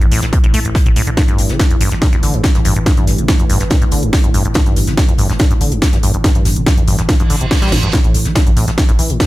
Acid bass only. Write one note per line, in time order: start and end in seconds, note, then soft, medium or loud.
0.01 0.07 G2 medium
0.12 0.21 A2 loud
0.23 0.26 A2 medium
0.33 0.39 C3 medium
0.44 0.47 A2 loud
0.54 0.60 A3 loud
0.65 0.70 A1 medium
0.86 0.89 A2 loud
0.96 1.02 A2 loud
1.07 1.10 D3 medium
1.17 1.23 G2 loud
1.28 1.51 G2 medium
1.49 1.58 D3 medium
1.59 1.63 A2 medium
1.70 1.76 F2 medium
1.81 1.90 G2 loud
1.92 1.95 G2 medium
2.02 2.08 A#2 medium
2.13 2.16 G2 loud
2.23 2.35 D3 medium
2.34 2.42 G2 medium
2.55 2.61 G2 medium
2.65 2.74 G2 loud
2.76 2.79 G2 medium
2.86 2.92 G2 loud
2.97 3.20 G2 medium
3.18 3.27 D3 medium
3.29 3.32 A2 medium
3.39 3.45 F2 medium
3.50 3.59 G2 loud
3.61 3.64 G2 medium
3.71 3.77 A#2 medium
3.82 3.85 G2 loud
3.92 4.04 D3 medium
4.03 4.11 G2 medium
4.24 4.30 G2 medium
4.34 4.43 G2 loud
4.45 4.48 G2 medium
4.55 4.61 G2 loud
4.66 4.89 G2 medium
4.87 4.96 D3 medium
4.97 5.01 A2 medium
5.08 5.14 F2 medium
5.19 5.28 G2 loud
5.30 5.33 G2 medium
5.40 5.46 A#2 medium
5.51 5.54 G2 loud
5.61 5.73 D3 medium
5.72 5.80 G2 medium
5.93 5.99 G2 medium
6.03 6.12 G2 loud
6.14 6.17 G2 medium
6.24 6.30 G2 loud
6.35 6.58 G2 medium
6.56 6.65 D3 medium
6.67 6.70 A2 medium
6.78 6.83 F2 medium
6.88 6.97 G2 loud
6.99 7.02 G2 medium
7.09 7.15 A#2 medium
7.20 7.23 G2 loud
7.30 7.36 D3 loud
7.41 7.46 C3 medium
7.62 7.74 G3 loud
7.72 7.81 G2 medium
7.83 7.89 G2 loud
7.93 7.99 A2 loud
8.04 8.27 A2 medium
8.25 8.34 E3 medium
8.36 8.39 A#2 medium
8.46 8.52 G2 medium
8.57 8.66 A2 loud
8.68 8.71 A2 medium
8.78 8.84 C3 medium
8.89 8.92 A2 loud
8.99 9.11 E3 medium
9.10 9.18 A2 medium